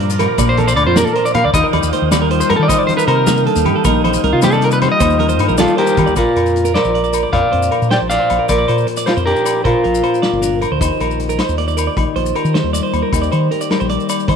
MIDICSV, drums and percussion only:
0, 0, Header, 1, 2, 480
1, 0, Start_track
1, 0, Key_signature, -2, "major"
1, 0, Tempo, 386100
1, 1917, Time_signature, 12, 3, 24, 8
1, 17850, End_track
2, 0, Start_track
2, 0, Title_t, "Drums"
2, 1, Note_on_c, 9, 42, 50
2, 4, Note_on_c, 9, 64, 29
2, 125, Note_off_c, 9, 42, 0
2, 125, Note_on_c, 9, 70, 82
2, 129, Note_off_c, 9, 64, 0
2, 239, Note_on_c, 9, 38, 25
2, 239, Note_on_c, 9, 42, 51
2, 243, Note_off_c, 9, 70, 0
2, 243, Note_on_c, 9, 70, 33
2, 245, Note_on_c, 9, 68, 67
2, 248, Note_on_c, 9, 64, 91
2, 364, Note_off_c, 9, 38, 0
2, 364, Note_off_c, 9, 42, 0
2, 368, Note_off_c, 9, 70, 0
2, 369, Note_off_c, 9, 68, 0
2, 373, Note_off_c, 9, 64, 0
2, 471, Note_on_c, 9, 42, 60
2, 475, Note_on_c, 9, 36, 84
2, 477, Note_on_c, 9, 68, 66
2, 479, Note_on_c, 9, 70, 98
2, 483, Note_on_c, 9, 63, 88
2, 483, Note_on_c, 9, 64, 24
2, 595, Note_off_c, 9, 42, 0
2, 600, Note_off_c, 9, 36, 0
2, 601, Note_off_c, 9, 68, 0
2, 603, Note_off_c, 9, 70, 0
2, 607, Note_off_c, 9, 63, 0
2, 607, Note_off_c, 9, 64, 0
2, 617, Note_on_c, 9, 64, 27
2, 711, Note_on_c, 9, 42, 42
2, 725, Note_off_c, 9, 64, 0
2, 725, Note_on_c, 9, 64, 84
2, 727, Note_on_c, 9, 70, 29
2, 835, Note_off_c, 9, 42, 0
2, 846, Note_off_c, 9, 64, 0
2, 846, Note_on_c, 9, 64, 27
2, 848, Note_off_c, 9, 70, 0
2, 848, Note_on_c, 9, 70, 84
2, 952, Note_on_c, 9, 42, 43
2, 956, Note_on_c, 9, 68, 68
2, 970, Note_off_c, 9, 64, 0
2, 973, Note_off_c, 9, 70, 0
2, 1077, Note_off_c, 9, 42, 0
2, 1080, Note_off_c, 9, 68, 0
2, 1189, Note_on_c, 9, 38, 86
2, 1189, Note_on_c, 9, 42, 63
2, 1199, Note_on_c, 9, 63, 88
2, 1199, Note_on_c, 9, 64, 85
2, 1204, Note_on_c, 9, 70, 102
2, 1313, Note_off_c, 9, 38, 0
2, 1313, Note_off_c, 9, 42, 0
2, 1323, Note_off_c, 9, 63, 0
2, 1323, Note_off_c, 9, 64, 0
2, 1327, Note_on_c, 9, 64, 26
2, 1328, Note_off_c, 9, 70, 0
2, 1329, Note_on_c, 9, 70, 33
2, 1434, Note_on_c, 9, 42, 49
2, 1452, Note_off_c, 9, 64, 0
2, 1454, Note_off_c, 9, 70, 0
2, 1558, Note_off_c, 9, 42, 0
2, 1562, Note_on_c, 9, 70, 82
2, 1670, Note_on_c, 9, 42, 51
2, 1677, Note_on_c, 9, 68, 65
2, 1678, Note_on_c, 9, 64, 84
2, 1687, Note_off_c, 9, 70, 0
2, 1794, Note_off_c, 9, 42, 0
2, 1801, Note_off_c, 9, 68, 0
2, 1803, Note_off_c, 9, 64, 0
2, 1909, Note_on_c, 9, 42, 67
2, 1910, Note_on_c, 9, 36, 91
2, 1912, Note_on_c, 9, 68, 68
2, 1916, Note_on_c, 9, 70, 106
2, 1925, Note_on_c, 9, 63, 83
2, 1925, Note_on_c, 9, 64, 26
2, 2033, Note_off_c, 9, 42, 0
2, 2034, Note_off_c, 9, 36, 0
2, 2036, Note_off_c, 9, 68, 0
2, 2041, Note_off_c, 9, 70, 0
2, 2045, Note_off_c, 9, 64, 0
2, 2045, Note_on_c, 9, 64, 26
2, 2050, Note_off_c, 9, 63, 0
2, 2150, Note_on_c, 9, 42, 51
2, 2152, Note_off_c, 9, 64, 0
2, 2152, Note_on_c, 9, 64, 83
2, 2159, Note_on_c, 9, 68, 68
2, 2274, Note_off_c, 9, 42, 0
2, 2275, Note_on_c, 9, 70, 84
2, 2276, Note_off_c, 9, 64, 0
2, 2284, Note_off_c, 9, 68, 0
2, 2394, Note_on_c, 9, 42, 57
2, 2399, Note_off_c, 9, 70, 0
2, 2402, Note_on_c, 9, 70, 35
2, 2518, Note_off_c, 9, 42, 0
2, 2526, Note_off_c, 9, 70, 0
2, 2626, Note_on_c, 9, 38, 87
2, 2626, Note_on_c, 9, 42, 72
2, 2634, Note_on_c, 9, 68, 61
2, 2635, Note_on_c, 9, 70, 106
2, 2641, Note_on_c, 9, 63, 90
2, 2641, Note_on_c, 9, 64, 86
2, 2751, Note_off_c, 9, 38, 0
2, 2751, Note_off_c, 9, 42, 0
2, 2757, Note_off_c, 9, 64, 0
2, 2757, Note_on_c, 9, 64, 27
2, 2758, Note_off_c, 9, 68, 0
2, 2759, Note_off_c, 9, 70, 0
2, 2765, Note_off_c, 9, 63, 0
2, 2866, Note_on_c, 9, 42, 52
2, 2878, Note_off_c, 9, 64, 0
2, 2878, Note_on_c, 9, 64, 28
2, 2991, Note_off_c, 9, 42, 0
2, 2993, Note_on_c, 9, 70, 80
2, 3002, Note_off_c, 9, 64, 0
2, 3107, Note_on_c, 9, 68, 67
2, 3108, Note_on_c, 9, 42, 53
2, 3109, Note_on_c, 9, 64, 86
2, 3117, Note_off_c, 9, 70, 0
2, 3231, Note_off_c, 9, 68, 0
2, 3232, Note_off_c, 9, 42, 0
2, 3233, Note_off_c, 9, 64, 0
2, 3347, Note_on_c, 9, 36, 83
2, 3348, Note_on_c, 9, 42, 67
2, 3352, Note_on_c, 9, 68, 67
2, 3355, Note_on_c, 9, 70, 101
2, 3359, Note_on_c, 9, 63, 79
2, 3359, Note_on_c, 9, 64, 26
2, 3470, Note_off_c, 9, 64, 0
2, 3470, Note_on_c, 9, 64, 30
2, 3471, Note_off_c, 9, 36, 0
2, 3473, Note_off_c, 9, 42, 0
2, 3476, Note_off_c, 9, 68, 0
2, 3479, Note_off_c, 9, 70, 0
2, 3483, Note_off_c, 9, 63, 0
2, 3581, Note_off_c, 9, 64, 0
2, 3581, Note_on_c, 9, 64, 83
2, 3587, Note_on_c, 9, 42, 48
2, 3597, Note_on_c, 9, 70, 28
2, 3705, Note_off_c, 9, 64, 0
2, 3711, Note_off_c, 9, 42, 0
2, 3711, Note_on_c, 9, 64, 25
2, 3716, Note_off_c, 9, 70, 0
2, 3716, Note_on_c, 9, 70, 83
2, 3827, Note_on_c, 9, 42, 51
2, 3834, Note_on_c, 9, 68, 73
2, 3835, Note_off_c, 9, 64, 0
2, 3840, Note_off_c, 9, 70, 0
2, 3952, Note_off_c, 9, 42, 0
2, 3959, Note_off_c, 9, 68, 0
2, 4062, Note_on_c, 9, 70, 96
2, 4063, Note_on_c, 9, 38, 88
2, 4063, Note_on_c, 9, 42, 62
2, 4065, Note_on_c, 9, 63, 85
2, 4065, Note_on_c, 9, 64, 94
2, 4186, Note_off_c, 9, 70, 0
2, 4187, Note_off_c, 9, 38, 0
2, 4187, Note_off_c, 9, 42, 0
2, 4188, Note_on_c, 9, 70, 32
2, 4189, Note_off_c, 9, 63, 0
2, 4189, Note_off_c, 9, 64, 0
2, 4189, Note_on_c, 9, 64, 27
2, 4307, Note_on_c, 9, 42, 51
2, 4312, Note_off_c, 9, 70, 0
2, 4313, Note_off_c, 9, 64, 0
2, 4422, Note_on_c, 9, 70, 72
2, 4432, Note_off_c, 9, 42, 0
2, 4543, Note_on_c, 9, 42, 47
2, 4546, Note_off_c, 9, 70, 0
2, 4548, Note_on_c, 9, 68, 64
2, 4549, Note_on_c, 9, 64, 89
2, 4667, Note_off_c, 9, 42, 0
2, 4672, Note_off_c, 9, 68, 0
2, 4673, Note_off_c, 9, 64, 0
2, 4780, Note_on_c, 9, 70, 94
2, 4783, Note_on_c, 9, 42, 68
2, 4783, Note_on_c, 9, 68, 66
2, 4784, Note_on_c, 9, 36, 96
2, 4792, Note_on_c, 9, 63, 90
2, 4792, Note_on_c, 9, 64, 29
2, 4904, Note_off_c, 9, 70, 0
2, 4907, Note_off_c, 9, 42, 0
2, 4907, Note_off_c, 9, 68, 0
2, 4908, Note_off_c, 9, 36, 0
2, 4916, Note_off_c, 9, 63, 0
2, 4916, Note_off_c, 9, 64, 0
2, 4921, Note_on_c, 9, 64, 29
2, 5029, Note_on_c, 9, 42, 49
2, 5029, Note_on_c, 9, 68, 64
2, 5030, Note_off_c, 9, 64, 0
2, 5030, Note_on_c, 9, 64, 87
2, 5140, Note_on_c, 9, 70, 75
2, 5153, Note_off_c, 9, 42, 0
2, 5154, Note_off_c, 9, 64, 0
2, 5154, Note_off_c, 9, 68, 0
2, 5264, Note_off_c, 9, 70, 0
2, 5264, Note_on_c, 9, 42, 50
2, 5389, Note_off_c, 9, 42, 0
2, 5493, Note_on_c, 9, 70, 93
2, 5500, Note_on_c, 9, 68, 64
2, 5503, Note_on_c, 9, 38, 87
2, 5503, Note_on_c, 9, 42, 61
2, 5512, Note_on_c, 9, 63, 99
2, 5512, Note_on_c, 9, 64, 94
2, 5612, Note_off_c, 9, 70, 0
2, 5612, Note_on_c, 9, 70, 29
2, 5624, Note_off_c, 9, 68, 0
2, 5627, Note_off_c, 9, 38, 0
2, 5627, Note_off_c, 9, 42, 0
2, 5636, Note_off_c, 9, 63, 0
2, 5636, Note_off_c, 9, 64, 0
2, 5639, Note_on_c, 9, 64, 30
2, 5737, Note_off_c, 9, 70, 0
2, 5738, Note_on_c, 9, 70, 29
2, 5742, Note_on_c, 9, 42, 47
2, 5763, Note_off_c, 9, 64, 0
2, 5857, Note_off_c, 9, 70, 0
2, 5857, Note_on_c, 9, 70, 78
2, 5867, Note_off_c, 9, 42, 0
2, 5981, Note_off_c, 9, 70, 0
2, 5984, Note_on_c, 9, 38, 27
2, 5984, Note_on_c, 9, 42, 51
2, 5989, Note_on_c, 9, 64, 92
2, 5989, Note_on_c, 9, 68, 73
2, 6109, Note_off_c, 9, 38, 0
2, 6109, Note_off_c, 9, 42, 0
2, 6113, Note_off_c, 9, 68, 0
2, 6114, Note_off_c, 9, 64, 0
2, 6216, Note_on_c, 9, 42, 66
2, 6219, Note_on_c, 9, 70, 91
2, 6222, Note_on_c, 9, 36, 81
2, 6232, Note_on_c, 9, 63, 85
2, 6232, Note_on_c, 9, 64, 28
2, 6238, Note_on_c, 9, 68, 70
2, 6337, Note_off_c, 9, 64, 0
2, 6337, Note_on_c, 9, 64, 28
2, 6340, Note_off_c, 9, 42, 0
2, 6340, Note_off_c, 9, 70, 0
2, 6340, Note_on_c, 9, 70, 31
2, 6346, Note_off_c, 9, 36, 0
2, 6356, Note_off_c, 9, 63, 0
2, 6362, Note_off_c, 9, 68, 0
2, 6454, Note_off_c, 9, 64, 0
2, 6454, Note_on_c, 9, 64, 93
2, 6460, Note_on_c, 9, 42, 46
2, 6465, Note_off_c, 9, 70, 0
2, 6577, Note_on_c, 9, 70, 81
2, 6578, Note_off_c, 9, 64, 0
2, 6584, Note_off_c, 9, 42, 0
2, 6700, Note_on_c, 9, 42, 49
2, 6701, Note_off_c, 9, 70, 0
2, 6702, Note_on_c, 9, 70, 32
2, 6718, Note_on_c, 9, 68, 74
2, 6823, Note_off_c, 9, 70, 0
2, 6823, Note_on_c, 9, 70, 31
2, 6824, Note_off_c, 9, 42, 0
2, 6842, Note_off_c, 9, 68, 0
2, 6933, Note_off_c, 9, 70, 0
2, 6933, Note_on_c, 9, 70, 103
2, 6938, Note_on_c, 9, 38, 84
2, 6938, Note_on_c, 9, 42, 68
2, 6952, Note_on_c, 9, 63, 93
2, 6952, Note_on_c, 9, 64, 94
2, 7054, Note_off_c, 9, 70, 0
2, 7054, Note_on_c, 9, 70, 32
2, 7063, Note_off_c, 9, 38, 0
2, 7063, Note_off_c, 9, 42, 0
2, 7076, Note_off_c, 9, 63, 0
2, 7076, Note_off_c, 9, 64, 0
2, 7179, Note_off_c, 9, 70, 0
2, 7183, Note_on_c, 9, 42, 55
2, 7200, Note_on_c, 9, 64, 28
2, 7293, Note_on_c, 9, 70, 80
2, 7308, Note_off_c, 9, 42, 0
2, 7324, Note_off_c, 9, 64, 0
2, 7418, Note_off_c, 9, 70, 0
2, 7423, Note_on_c, 9, 42, 51
2, 7426, Note_on_c, 9, 36, 66
2, 7426, Note_on_c, 9, 64, 98
2, 7426, Note_on_c, 9, 70, 32
2, 7443, Note_on_c, 9, 68, 68
2, 7546, Note_off_c, 9, 70, 0
2, 7546, Note_on_c, 9, 70, 33
2, 7547, Note_off_c, 9, 42, 0
2, 7550, Note_off_c, 9, 36, 0
2, 7550, Note_off_c, 9, 64, 0
2, 7554, Note_on_c, 9, 64, 27
2, 7567, Note_off_c, 9, 68, 0
2, 7659, Note_off_c, 9, 70, 0
2, 7659, Note_on_c, 9, 70, 77
2, 7666, Note_on_c, 9, 36, 78
2, 7666, Note_on_c, 9, 42, 62
2, 7671, Note_on_c, 9, 68, 57
2, 7678, Note_off_c, 9, 64, 0
2, 7784, Note_off_c, 9, 70, 0
2, 7790, Note_off_c, 9, 36, 0
2, 7790, Note_off_c, 9, 42, 0
2, 7796, Note_off_c, 9, 68, 0
2, 7909, Note_on_c, 9, 70, 29
2, 7911, Note_on_c, 9, 42, 43
2, 7918, Note_on_c, 9, 68, 57
2, 8033, Note_off_c, 9, 70, 0
2, 8033, Note_on_c, 9, 70, 28
2, 8035, Note_off_c, 9, 42, 0
2, 8042, Note_off_c, 9, 68, 0
2, 8152, Note_on_c, 9, 42, 43
2, 8157, Note_off_c, 9, 70, 0
2, 8162, Note_on_c, 9, 70, 29
2, 8270, Note_off_c, 9, 70, 0
2, 8270, Note_on_c, 9, 70, 71
2, 8276, Note_off_c, 9, 42, 0
2, 8393, Note_off_c, 9, 70, 0
2, 8393, Note_on_c, 9, 70, 26
2, 8394, Note_on_c, 9, 38, 75
2, 8394, Note_on_c, 9, 42, 51
2, 8405, Note_on_c, 9, 68, 52
2, 8509, Note_off_c, 9, 70, 0
2, 8509, Note_on_c, 9, 70, 26
2, 8518, Note_off_c, 9, 38, 0
2, 8518, Note_off_c, 9, 42, 0
2, 8529, Note_off_c, 9, 68, 0
2, 8633, Note_off_c, 9, 70, 0
2, 8639, Note_on_c, 9, 42, 42
2, 8752, Note_on_c, 9, 70, 28
2, 8764, Note_off_c, 9, 42, 0
2, 8867, Note_off_c, 9, 70, 0
2, 8867, Note_on_c, 9, 70, 80
2, 8879, Note_on_c, 9, 42, 41
2, 8879, Note_on_c, 9, 68, 57
2, 8991, Note_off_c, 9, 70, 0
2, 9003, Note_off_c, 9, 42, 0
2, 9003, Note_off_c, 9, 68, 0
2, 9113, Note_on_c, 9, 36, 73
2, 9113, Note_on_c, 9, 42, 53
2, 9113, Note_on_c, 9, 68, 57
2, 9237, Note_off_c, 9, 36, 0
2, 9238, Note_off_c, 9, 42, 0
2, 9238, Note_off_c, 9, 68, 0
2, 9355, Note_on_c, 9, 42, 42
2, 9479, Note_off_c, 9, 42, 0
2, 9481, Note_on_c, 9, 70, 70
2, 9591, Note_on_c, 9, 42, 41
2, 9598, Note_on_c, 9, 68, 57
2, 9605, Note_off_c, 9, 70, 0
2, 9715, Note_off_c, 9, 42, 0
2, 9722, Note_off_c, 9, 68, 0
2, 9723, Note_on_c, 9, 70, 28
2, 9831, Note_on_c, 9, 38, 74
2, 9831, Note_on_c, 9, 42, 59
2, 9847, Note_off_c, 9, 70, 0
2, 9955, Note_off_c, 9, 38, 0
2, 9955, Note_off_c, 9, 42, 0
2, 10077, Note_on_c, 9, 70, 89
2, 10081, Note_on_c, 9, 42, 45
2, 10201, Note_off_c, 9, 70, 0
2, 10205, Note_off_c, 9, 42, 0
2, 10313, Note_on_c, 9, 42, 46
2, 10317, Note_on_c, 9, 70, 28
2, 10320, Note_on_c, 9, 68, 57
2, 10437, Note_off_c, 9, 42, 0
2, 10441, Note_off_c, 9, 70, 0
2, 10445, Note_off_c, 9, 68, 0
2, 10554, Note_on_c, 9, 70, 85
2, 10557, Note_on_c, 9, 36, 76
2, 10557, Note_on_c, 9, 42, 64
2, 10557, Note_on_c, 9, 68, 58
2, 10678, Note_off_c, 9, 70, 0
2, 10681, Note_off_c, 9, 36, 0
2, 10681, Note_off_c, 9, 68, 0
2, 10682, Note_off_c, 9, 42, 0
2, 10794, Note_on_c, 9, 68, 59
2, 10795, Note_on_c, 9, 70, 31
2, 10802, Note_on_c, 9, 42, 47
2, 10915, Note_off_c, 9, 70, 0
2, 10915, Note_on_c, 9, 70, 29
2, 10918, Note_off_c, 9, 68, 0
2, 10926, Note_off_c, 9, 42, 0
2, 11030, Note_off_c, 9, 70, 0
2, 11030, Note_on_c, 9, 70, 28
2, 11036, Note_on_c, 9, 42, 49
2, 11147, Note_off_c, 9, 70, 0
2, 11147, Note_on_c, 9, 70, 70
2, 11160, Note_off_c, 9, 42, 0
2, 11269, Note_off_c, 9, 70, 0
2, 11269, Note_on_c, 9, 70, 28
2, 11274, Note_on_c, 9, 68, 55
2, 11279, Note_on_c, 9, 38, 69
2, 11279, Note_on_c, 9, 42, 59
2, 11393, Note_off_c, 9, 70, 0
2, 11397, Note_on_c, 9, 70, 26
2, 11398, Note_off_c, 9, 68, 0
2, 11404, Note_off_c, 9, 38, 0
2, 11404, Note_off_c, 9, 42, 0
2, 11521, Note_off_c, 9, 70, 0
2, 11521, Note_on_c, 9, 42, 45
2, 11637, Note_on_c, 9, 70, 28
2, 11646, Note_off_c, 9, 42, 0
2, 11759, Note_on_c, 9, 42, 42
2, 11759, Note_on_c, 9, 68, 60
2, 11760, Note_off_c, 9, 70, 0
2, 11760, Note_on_c, 9, 70, 91
2, 11883, Note_off_c, 9, 68, 0
2, 11884, Note_off_c, 9, 42, 0
2, 11885, Note_off_c, 9, 70, 0
2, 11995, Note_on_c, 9, 42, 54
2, 11997, Note_on_c, 9, 36, 77
2, 12009, Note_on_c, 9, 68, 59
2, 12119, Note_off_c, 9, 42, 0
2, 12121, Note_off_c, 9, 36, 0
2, 12133, Note_off_c, 9, 68, 0
2, 12235, Note_on_c, 9, 42, 39
2, 12359, Note_off_c, 9, 42, 0
2, 12366, Note_on_c, 9, 70, 71
2, 12473, Note_on_c, 9, 42, 41
2, 12479, Note_on_c, 9, 68, 58
2, 12491, Note_off_c, 9, 70, 0
2, 12598, Note_off_c, 9, 42, 0
2, 12604, Note_off_c, 9, 68, 0
2, 12610, Note_on_c, 9, 70, 29
2, 12716, Note_on_c, 9, 38, 74
2, 12716, Note_on_c, 9, 42, 54
2, 12735, Note_off_c, 9, 70, 0
2, 12841, Note_off_c, 9, 38, 0
2, 12841, Note_off_c, 9, 42, 0
2, 12958, Note_on_c, 9, 42, 41
2, 12963, Note_on_c, 9, 70, 90
2, 13083, Note_off_c, 9, 42, 0
2, 13088, Note_off_c, 9, 70, 0
2, 13196, Note_on_c, 9, 42, 43
2, 13207, Note_on_c, 9, 68, 57
2, 13210, Note_on_c, 9, 70, 28
2, 13320, Note_off_c, 9, 42, 0
2, 13332, Note_off_c, 9, 68, 0
2, 13334, Note_off_c, 9, 70, 0
2, 13438, Note_on_c, 9, 36, 77
2, 13439, Note_on_c, 9, 42, 57
2, 13449, Note_on_c, 9, 70, 87
2, 13453, Note_on_c, 9, 68, 60
2, 13563, Note_off_c, 9, 36, 0
2, 13564, Note_off_c, 9, 42, 0
2, 13574, Note_off_c, 9, 70, 0
2, 13578, Note_off_c, 9, 68, 0
2, 13678, Note_on_c, 9, 42, 44
2, 13687, Note_on_c, 9, 70, 29
2, 13691, Note_on_c, 9, 68, 60
2, 13802, Note_off_c, 9, 42, 0
2, 13809, Note_off_c, 9, 70, 0
2, 13809, Note_on_c, 9, 70, 27
2, 13815, Note_off_c, 9, 68, 0
2, 13918, Note_on_c, 9, 42, 45
2, 13923, Note_off_c, 9, 70, 0
2, 13923, Note_on_c, 9, 70, 27
2, 14041, Note_off_c, 9, 70, 0
2, 14041, Note_on_c, 9, 70, 70
2, 14042, Note_off_c, 9, 42, 0
2, 14154, Note_on_c, 9, 38, 73
2, 14154, Note_on_c, 9, 42, 59
2, 14164, Note_off_c, 9, 70, 0
2, 14164, Note_on_c, 9, 70, 26
2, 14168, Note_on_c, 9, 68, 51
2, 14278, Note_off_c, 9, 38, 0
2, 14278, Note_off_c, 9, 42, 0
2, 14282, Note_off_c, 9, 70, 0
2, 14282, Note_on_c, 9, 70, 26
2, 14292, Note_off_c, 9, 68, 0
2, 14394, Note_on_c, 9, 42, 46
2, 14406, Note_off_c, 9, 70, 0
2, 14519, Note_off_c, 9, 42, 0
2, 14520, Note_on_c, 9, 70, 28
2, 14637, Note_on_c, 9, 42, 47
2, 14640, Note_off_c, 9, 70, 0
2, 14640, Note_on_c, 9, 70, 84
2, 14652, Note_on_c, 9, 68, 58
2, 14761, Note_off_c, 9, 42, 0
2, 14764, Note_off_c, 9, 70, 0
2, 14776, Note_off_c, 9, 68, 0
2, 14874, Note_on_c, 9, 42, 55
2, 14878, Note_on_c, 9, 36, 74
2, 14887, Note_on_c, 9, 68, 57
2, 14999, Note_off_c, 9, 42, 0
2, 15003, Note_off_c, 9, 36, 0
2, 15012, Note_off_c, 9, 68, 0
2, 15116, Note_on_c, 9, 42, 43
2, 15239, Note_on_c, 9, 70, 67
2, 15240, Note_off_c, 9, 42, 0
2, 15358, Note_on_c, 9, 42, 46
2, 15364, Note_off_c, 9, 70, 0
2, 15367, Note_on_c, 9, 68, 60
2, 15479, Note_on_c, 9, 70, 28
2, 15482, Note_off_c, 9, 42, 0
2, 15491, Note_off_c, 9, 68, 0
2, 15600, Note_on_c, 9, 38, 78
2, 15600, Note_on_c, 9, 42, 56
2, 15604, Note_off_c, 9, 70, 0
2, 15724, Note_off_c, 9, 38, 0
2, 15724, Note_off_c, 9, 42, 0
2, 15840, Note_on_c, 9, 42, 45
2, 15843, Note_on_c, 9, 70, 84
2, 15964, Note_off_c, 9, 42, 0
2, 15968, Note_off_c, 9, 70, 0
2, 16078, Note_on_c, 9, 42, 45
2, 16081, Note_on_c, 9, 68, 58
2, 16086, Note_on_c, 9, 70, 26
2, 16203, Note_off_c, 9, 42, 0
2, 16206, Note_off_c, 9, 68, 0
2, 16210, Note_off_c, 9, 70, 0
2, 16318, Note_on_c, 9, 36, 82
2, 16318, Note_on_c, 9, 42, 61
2, 16318, Note_on_c, 9, 68, 62
2, 16330, Note_on_c, 9, 70, 83
2, 16442, Note_off_c, 9, 42, 0
2, 16443, Note_off_c, 9, 36, 0
2, 16443, Note_off_c, 9, 68, 0
2, 16448, Note_off_c, 9, 70, 0
2, 16448, Note_on_c, 9, 70, 25
2, 16558, Note_on_c, 9, 42, 45
2, 16564, Note_on_c, 9, 68, 58
2, 16567, Note_off_c, 9, 70, 0
2, 16567, Note_on_c, 9, 70, 26
2, 16683, Note_off_c, 9, 42, 0
2, 16688, Note_off_c, 9, 68, 0
2, 16691, Note_off_c, 9, 70, 0
2, 16801, Note_on_c, 9, 42, 44
2, 16922, Note_on_c, 9, 70, 68
2, 16925, Note_off_c, 9, 42, 0
2, 17038, Note_on_c, 9, 38, 73
2, 17038, Note_on_c, 9, 42, 51
2, 17046, Note_off_c, 9, 70, 0
2, 17053, Note_on_c, 9, 68, 52
2, 17162, Note_on_c, 9, 70, 24
2, 17163, Note_off_c, 9, 38, 0
2, 17163, Note_off_c, 9, 42, 0
2, 17177, Note_off_c, 9, 68, 0
2, 17272, Note_on_c, 9, 42, 40
2, 17286, Note_off_c, 9, 70, 0
2, 17288, Note_on_c, 9, 70, 24
2, 17397, Note_off_c, 9, 42, 0
2, 17405, Note_off_c, 9, 70, 0
2, 17405, Note_on_c, 9, 70, 26
2, 17515, Note_on_c, 9, 42, 44
2, 17519, Note_off_c, 9, 70, 0
2, 17519, Note_on_c, 9, 70, 80
2, 17524, Note_on_c, 9, 68, 58
2, 17639, Note_off_c, 9, 42, 0
2, 17643, Note_off_c, 9, 70, 0
2, 17648, Note_off_c, 9, 68, 0
2, 17649, Note_on_c, 9, 70, 25
2, 17751, Note_on_c, 9, 42, 54
2, 17756, Note_on_c, 9, 36, 79
2, 17766, Note_on_c, 9, 68, 58
2, 17767, Note_off_c, 9, 70, 0
2, 17767, Note_on_c, 9, 70, 25
2, 17850, Note_off_c, 9, 36, 0
2, 17850, Note_off_c, 9, 42, 0
2, 17850, Note_off_c, 9, 68, 0
2, 17850, Note_off_c, 9, 70, 0
2, 17850, End_track
0, 0, End_of_file